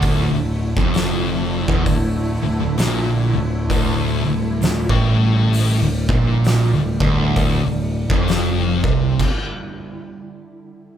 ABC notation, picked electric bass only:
X:1
M:4/4
L:1/16
Q:"Swing" 1/4=66
K:Dm
V:1 name="Picked electric bass" clef=bass
D,,, D,,,2 F,,,4 E,,, D,,,2 D,,, D,,, B,,,2 D,,,2 | D,,,2 D,,,2 D,,, A,,,4 D,,, B,,,3 D,,, D,,,2- | D,,, D,,,2 F,,,3 C,,2 z8 |]